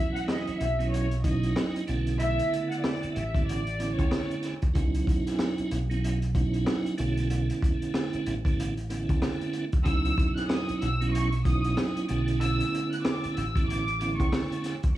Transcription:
Already playing: E3 F#3 B3 C#4 E4 E5
0.14 F#5, closed hi-hat
0.28 D#5, cross-stick, snare
0.47 muted fingered electric bass stroke, closed hi-hat
0.60 B1 E5, closed hi-hat
0.79 D#3 F#3 B3 C#4 E4, closed hi-hat
0.92 C#5, closed hi-hat
1.11 closed hi-hat
1.24 F#3 B3 C#4 D#4 E4 D#5, kick, closed hi-hat
1.43 closed hi-hat
1.56 cross-stick, snare
1.76 closed hi-hat
1.87 B1 D3 A3 B3 C#4 E4, closed hi-hat
2.07 closed hi-hat
2.19 C#3 D3 A3 B3 E4 E5, closed hi-hat
2.39 closed hi-hat
2.54 closed hi-hat
2.71 F#5, closed hi-hat
2.82 D5, cross-stick, snare
3.03 muted fingered electric bass stroke, closed hi-hat
3.15 A1 E5, closed hi-hat
3.34 D3 A3 B3 C#4 E4, kick, closed hi-hat
3.47 D5, closed hi-hat
3.67 closed hi-hat
3.78 D3 A3 B3 C#4 E4, closed hi-hat
3.97 C#2 C#5, kick, closed hi-hat
4.11 cross-stick, snare
4.31 closed hi-hat
4.43 snare, closed hi-hat
4.62 kick, closed hi-hat
4.74 C#2 F#3 B3 C#4 D#4 E4, kick, closed hi-hat
4.95 closed hi-hat
5.07 kick, closed hi-hat
5.27 snare, closed hi-hat
5.39 cross-stick, snare
5.58 muted fingered electric bass stroke, closed hi-hat
5.71 B1, closed hi-hat
5.90 D#3 F#3 B3 C#4 E4, closed hi-hat
6.04 closed hi-hat
6.22 closed hi-hat
6.35 F#3 B3 C#4 D#4 E4, kick, closed hi-hat
6.54 closed hi-hat
6.66 cross-stick, snare
6.86 closed hi-hat
6.98 B1 D3 A3 B3 C#4 E4, closed hi-hat
7.17 closed hi-hat
7.29 D3 A3 B3 C#4 E4, closed hi-hat
7.50 closed hi-hat
7.62 kick, closed hi-hat
7.82 closed hi-hat
7.94 cross-stick, snare
8.13 muted fingered electric bass stroke, closed hi-hat
8.26 A1, closed hi-hat
8.45 D3 A3 B3 C#4 E4, kick, closed hi-hat
8.60 closed hi-hat
8.77 closed hi-hat
8.89 D3 A3 B3 C#4 E4, closed hi-hat
9.09 C#2, kick, closed hi-hat
9.22 cross-stick, snare
9.41 closed hi-hat
9.53 closed hi-hat
9.72 kick, closed hi-hat
9.84 C#2 F#3 B3 C#4 D#4 E4 E6, kick, closed hi-hat
10.05 closed hi-hat
10.18 kick, closed hi-hat
10.36 F#6, snare, closed hi-hat
10.49 D#6, cross-stick, snare
10.68 muted fingered electric bass stroke, closed hi-hat
10.81 B1 E6, closed hi-hat
11.00 D#3 F#3 B3 C#4 E4, closed hi-hat
11.13 C#6, closed hi-hat
11.32 closed hi-hat
11.45 F#3 B3 C#4 D#4 E4 D#6, kick, closed hi-hat
11.64 closed hi-hat
11.77 cross-stick, snare
11.97 closed hi-hat
12.08 B1 D3 A3 B3 C#4 E4, closed hi-hat
12.28 closed hi-hat
12.40 D3 A3 B3 C#4 E4 E6, closed hi-hat
12.60 closed hi-hat
12.74 closed hi-hat
12.92 F#6, closed hi-hat
13.03 D6, cross-stick, snare
13.24 muted fingered electric bass stroke, closed hi-hat
13.36 A1 E6, closed hi-hat
13.55 D3 A3 B3 C#4 E4, kick, closed hi-hat
13.68 D6, closed hi-hat
13.88 closed hi-hat
14.00 D3 A3 B3 C#4 E4, closed hi-hat
14.18 C#2 C#6, kick, closed hi-hat
14.32 cross-stick, snare
14.52 closed hi-hat
14.64 snare, closed hi-hat
14.83 kick, closed hi-hat

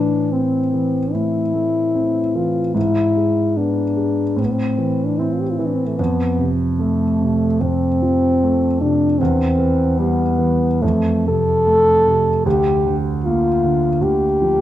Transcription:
Already playing: A2 E3 D4
0.32 C4
0.74 E3
1.13 A2 E4
1.54 A3
1.95 C4
2.35 E3 F4
2.74 G#2 E4
3.16 G#3
3.56 B3 D4
3.97 G#3
4.36 A2 C4
4.45 B3
4.51 C4
4.78 E3
5.05 D4
5.19 C4 E4
5.33 F4
5.41 G4
5.50 F4
5.57 E3 E4
5.66 D4
5.75 C4
5.87 A3
5.97 F2 B3
6.39 C3
6.78 A3
7.21 C3
7.60 F2 C4
8.02 F3
8.44 A3
8.81 C3 D4
9.19 E2 C4
9.59 E3
9.98 G3 B3
10.39 E3
10.82 F2 A3
11.27 C3 A4
11.67 A3
12.07 C3
12.46 D2 G4
12.86 D3
13.24 A#3 F4
13.64 D3
14.01 D2 G4
14.42 F3

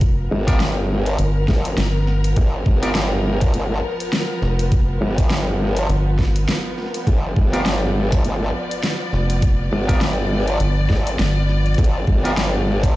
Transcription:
Already playing: F1 F3 B3 A#4
0.01 kick, closed hi-hat
0.31 G1
0.47 B3 F4 G4 A#4, kick, snare, closed hi-hat
0.60 snare, closed hi-hat
1.06 closed hi-hat
1.19 G1, closed hi-hat
1.48 G1, kick, snare
1.65 closed hi-hat
1.77 G1, snare, closed hi-hat
2.07 snare
2.24 closed hi-hat
2.36 G1, kick, closed hi-hat
2.66 G1, kick
2.83 B3 F4 G4 A#4, snare, closed hi-hat
2.95 snare, closed hi-hat
3.41 kick, closed hi-hat
3.54 G1, closed hi-hat
4.00 closed hi-hat
4.13 snare, closed hi-hat
4.42 F1, snare
4.59 closed hi-hat
4.72 kick, closed hi-hat
5.01 G1
5.18 kick, snare, closed hi-hat
5.30 snare, closed hi-hat
5.77 closed hi-hat
5.89 G1, closed hi-hat
6.19 kick, snare
6.36 closed hi-hat
6.49 snare, closed hi-hat
6.78 snare
6.82 snare
6.86 snare
6.90 snare
6.94 snare, closed hi-hat
6.97 snare
7.01 snare
7.04 G1 D5, kick, snare, closed hi-hat
7.36 G1, kick
7.53 B3 F4 G4 A#4, snare, closed hi-hat
7.66 snare, closed hi-hat
8.12 kick, closed hi-hat
8.25 G1, closed hi-hat
8.71 closed hi-hat
8.83 snare, closed hi-hat
9.13 F1, snare
9.30 closed hi-hat
9.42 kick, closed hi-hat
9.72 G1
9.88 B3 F4 G4 A#4, kick, snare, closed hi-hat
10.01 snare, closed hi-hat
10.48 closed hi-hat
10.60 G1, closed hi-hat
10.90 G1, kick, snare
11.07 closed hi-hat
11.19 G1, snare, closed hi-hat
11.49 snare
11.66 closed hi-hat
11.74 G1, kick, closed hi-hat
11.79 closed hi-hat
11.84 closed hi-hat
12.07 G1, kick
12.24 B3 F4 G4 A#4, snare, closed hi-hat
12.37 snare, closed hi-hat
12.83 kick, closed hi-hat

